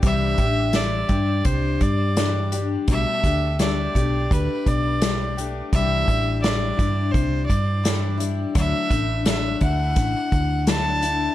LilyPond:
<<
  \new Staff \with { instrumentName = "Fiddle" } { \time 4/4 \key c \lydian \tempo 4 = 84 e''4 d''4 c''8 d''4 r8 | e''4 d''4 b'8 d''4 r8 | e''4 d''4 c''8 d''4 r8 | e''4 e''8 fis''4. a''4 | }
  \new Staff \with { instrumentName = "Twelve-string acoustic guitar" } { \time 4/4 \key c \lydian <c e g d' g'>8 <g d' g'>8 <e g d' g'>8 <g d' g'>4. <e g d' g'>8 <g d' g'>8 | <b, g a d' g'>8 <a d' g'>8 <g a d' g'>8 <a d' g'>4. <g a d' g'>8 <a d' g'>8 | <c e g d' e'>8 <g d' e'>8 <e g d' e'>8 <g d' e'>4. <e g d' e'>8 <g d' e'>8 | <d fis a d' e'>8 <a d' e'>8 <fis a d' e'>8 <a d' e'>4. <fis a d' e'>8 <a d' e'>8 | }
  \new Staff \with { instrumentName = "Fingered electric bass" } { \clef bass \time 4/4 \key c \lydian c,8 a,,4 g,8 c,8 g,4. | b,,16 r16 d,4 b,,8 d,16 r16 b,,4. | c,8 a,,4 g,8 c,8 g,4. | d,16 r16 a,,4 d,8 a,,16 r16 d,4. | }
  \new DrumStaff \with { instrumentName = "Drums" } \drummode { \time 4/4 <hh bd>8 <hh bd>8 <hh sn>8 <hh bd>8 <hh bd>8 <hh bd>8 <hh sn>8 hh8 | <hh bd>8 <hh bd>8 <hh sn>8 <hh bd>8 <hh bd>8 <hh bd>8 <hh sn>8 hh8 | <hh bd>8 <hh bd>8 <hh sn>8 <hh bd>8 <hh bd>8 <hh bd>8 <hh sn>8 hh8 | <hh bd>8 <hh bd>8 <hh sn>8 <hh bd>8 <hh bd>8 <hh bd>8 <hh sn>8 hh8 | }
>>